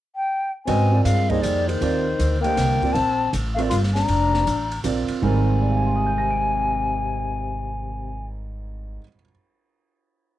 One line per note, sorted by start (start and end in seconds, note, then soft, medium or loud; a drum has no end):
0.16 0.51 G5 medium
0.65 1.04 G#2 medium
0.65 1.02 C4 medium
0.65 0.90 C#4 medium
0.65 0.90 F#4 medium
0.65 0.91 B4 medium
0.65 0.91 D#5 medium
0.65 1.02 G#5 medium
0.65 ride medium
0.92 1.25 C4 medium
0.92 1.25 F4 medium
0.92 1.26 A#4 medium
0.92 1.26 D5 medium
1.04 1.42 G2 medium
1.04 1.31 G#3 medium
1.04 1.31 F5 medium
1.04 hi-hat pedal medium
1.04 ride medium
1.29 1.42 G3 medium
1.29 1.78 A#3 medium
1.29 1.79 D#4 medium
1.29 1.79 G#4 medium
1.29 1.79 C5 medium
1.29 1.43 D#5 medium
1.29 kick soft
1.29 ride soft
1.42 1.80 F2 medium
1.42 1.70 G3 medium
1.42 1.69 D5 medium
1.42 hi-hat pedal medium
1.42 ride medium
1.67 2.40 D#3 medium
1.67 2.41 C5 medium
1.67 ride soft
1.81 2.18 D#2 medium
1.81 2.04 C4 medium
1.81 2.04 F4 medium
1.81 2.04 A#4 medium
1.81 2.05 D5 medium
1.81 ride soft
2.19 2.56 D2 medium
2.19 hi-hat pedal medium
2.19 ride medium
2.41 2.80 D3 medium
2.41 2.97 A#3 medium
2.41 2.94 G5 loud
2.41 ride soft
2.45 2.80 G4 soft
2.45 2.80 C5 soft
2.45 2.81 D#5 medium
2.57 2.80 C2 medium
2.57 snare soft
2.57 hi-hat pedal medium
2.57 ride medium
2.82 2.94 C4 medium
2.82 2.94 F4 medium
2.82 2.95 A#4 medium
2.82 2.95 D5 medium
2.82 muted upright bass stroke soft
2.82 kick medium
2.82 ride soft
2.93 3.32 A#1 medium
2.93 3.33 C4 medium
2.93 3.32 A5 loud
2.93 ride soft
3.33 3.70 A1 medium
3.33 hi-hat pedal medium
3.33 ride medium
3.55 3.63 A3 medium
3.55 3.70 C4 medium
3.55 3.61 F5 medium
3.55 ride soft
3.59 3.70 F4 medium
3.59 3.70 A#4 medium
3.59 3.71 D5 medium
3.69 4.08 G1 medium
3.69 3.82 F4 medium
3.69 3.75 C6 medium
3.69 hi-hat pedal medium
3.69 ride medium
3.83 snare soft
3.94 4.81 D4 medium
3.94 4.80 A#5 loud
3.94 snare soft
3.94 ride soft
4.08 4.46 F1 medium
4.08 ride medium
4.34 snare soft
4.46 4.83 A1 medium
4.46 hi-hat pedal medium
4.46 ride medium
4.72 ride soft
4.84 5.08 A#1 medium
4.84 5.22 C4 medium
4.84 5.22 F4 medium
4.84 5.23 A#4 medium
4.84 5.23 D5 medium
4.84 hi-hat pedal medium
4.84 ride medium
5.08 muted upright bass stroke soft
5.08 ride soft
5.22 8.96 G#1 medium
5.22 9.00 G#2 medium
5.22 8.27 C3 medium
5.22 9.00 D#3 medium
5.22 9.00 G3 medium
5.22 9.01 C4 medium
5.22 9.01 A#4 medium
5.22 8.26 G#5 medium
5.61 8.96 D5 soft
5.69 9.00 F5 soft
5.77 9.04 G#5 soft
5.86 9.09 C6 soft
5.96 9.14 D#6 soft
6.07 9.19 G6 soft
6.18 9.25 A#6 soft
6.31 9.31 D7 soft